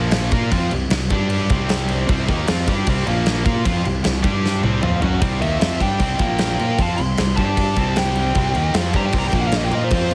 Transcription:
Already playing: A#1 A#2 F3 A#3
0.11 snare, crash
0.31 A#2 A#3 F4 A#4, kick, crash
0.51 F2 F3 C4 F4, kick, crash
0.71 C2 C3 G3, crash
0.90 C2 C3 G3, snare, crash
1.10 G2 G3 D4 G4, kick, crash
1.30 crash
1.49 C2 C3 G3 C4, kick, crash
1.69 snare, crash
1.88 crash
2.09 C2 C3 G3 C4, kick, crash
2.28 D#2 D#3 A#3 D#4, kick, crash
2.47 F2 F3 C4 F4, snare, crash
2.68 G2 G3 D4 G4, kick, crash
2.87 C2 C3 G3 C4, kick, crash
3.06 A#1 A#2 F3 A#3, crash
3.26 snare, crash
3.45 A#2 A#3 F4 A#4, kick, crash
3.65 F2 F3 C4 F4, kick, crash
3.85 C2 C3 G3, crash
4.04 C2 C3 G3, snare, crash
4.22 G2 G3 D4 G4, kick, crash
4.46 snare
4.63 C2 C3 G3 C4, high tom
4.82 F2 F3 C4 F4, mid tom
5.02 F#2 F#3 C#4 F#4, floor tom
5.21 C2 C3 G3 C4, kick, crash
5.40 D#2 D#3 A#3 D#4 E5, crash
5.60 F2 F3 C4 F4, snare, crash
5.80 G2 G3 D4 G4 G5, kick, crash
5.99 C2 C3 G3 C4, kick, crash
6.19 A#1 A#2 F3 A#3 G5, kick, crash
6.38 snare, crash
6.59 A#2 A#3 F4 A#4, crash
6.78 F2 F3 C4 F4, kick, crash
6.82 A5
6.97 C2 C3 G3 C6, crash
7.17 C2 C3 G3, snare, crash
7.37 G2 G3 D4 G4 A5, kick, crash
7.57 kick, crash
7.76 C2 C3 G3 C4, kick, crash
7.96 G5, snare, crash
8.16 crash
8.35 C2 C3 G3 C4, kick, crash
8.55 D#2 D#3 A#3 D#4, crash
8.74 F2 F3 C4 F4, snare, crash
8.93 G2 G3 D4 G4 A#5, kick, crash
9.06 G5
9.12 C2 C3 G3 C4, kick, crash
9.18 A#5
9.27 G5
9.32 A#1 A#2 F3 A#3, kick, crash
9.40 F#5
9.47 F5
9.52 snare, crash
9.56 D#5
9.65 G5
9.71 A#2 A#3 F4 A#4 D#5, crash
9.84 C5
9.91 F2 F3 C4 F4, kick, crash
9.95 C5
10.11 C3, crash

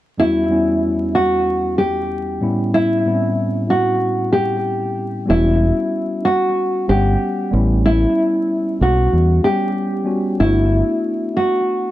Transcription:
0.18 E2 G3 B3 C#4 E4 F#4
0.50 E2 G3 B3 C#4 E4
1.15 F#4
1.78 G4
2.41 A2 G3 B3 C#4 E4
2.74 E4
3.05 A2 G3 B3 C4 E4
3.14 C#4
3.70 F#4
4.33 G4
5.26 G3 B3 C#4 E4 F#4
5.30 E1
6.25 F#4
6.88 G1 G3 B3 C#4 G4 F#5
7.51 A1 G3 B3 C#4 E4
7.86 E4
8.81 B1 F#4
9.13 E2
9.44 G3 B3 C#4 G4
10.04 G3 B3 C#4 F#4
10.40 G1 A3 B3 D4 E4 F#4
11.37 F#4

